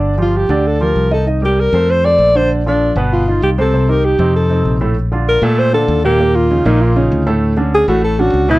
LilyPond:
<<
  \new Staff \with { instrumentName = "Alto saxophone" } { \time 4/4 \key bes \major \tempo 4 = 195 r8 f'8 g'4 a'8 bes'4 a'8 | r8 g'8 bes'4 c''8 d''4 c''8 | r8 d'4 r8 f'4 g'8 a'8~ | a'8 bes'8 g'4 a'4. r8 |
r4 bes'8 a'8 c''8 a'4 g'8~ | g'8 f'4 ees'8 f'4. r8 | r4 aes'8 fis'8 a'8 fis'4 e'8 | }
  \new Staff \with { instrumentName = "Grand piano" } { \time 4/4 \key bes \major <d d' d''>8 <f f' g'>4 <d d' d''>4 <f f' g'>4 <ees ees' ees''>8 | <ees ees' ees''>8 <g g' bes'>4 <a a' c''>4 <a a' c''>4 <d d' d''>8~ | <d d' d''>8 <f f' a'>4 <ces ces' ces''>4 <dis dis' f'>4 <c c' c''>8 | <c c' c''>8 <ees ees' g'>4 <c c' ees'>4 <c c' ees'>4 <a, a a'>8 |
r8 <d d' f'>4 <bes, a a'>4 <d d' f'>4 <bes, bes bes'>8 | <bes, bes bes'>4 <des des' ees'>8 <bes, bes bes'>4 <des des' ees'>4 <a, a a'>8~ | <a, a a'>8 <d cis' d'>4 <a, a a'>4 <d cis' d'>4 <ces ces' ces''>8 | }
  \new Staff \with { instrumentName = "Fingered electric bass" } { \clef bass \time 4/4 \key bes \major g,,4. d,4. c,4~ | c,4. f,4. bes,,4~ | bes,,4. g,,4. c,4~ | c,4. f,4. bes,,4~ |
bes,,4. bes,4. ees,4~ | ees,4. bes,,4. d,4~ | d,4. a,,4. cis,4 | }
>>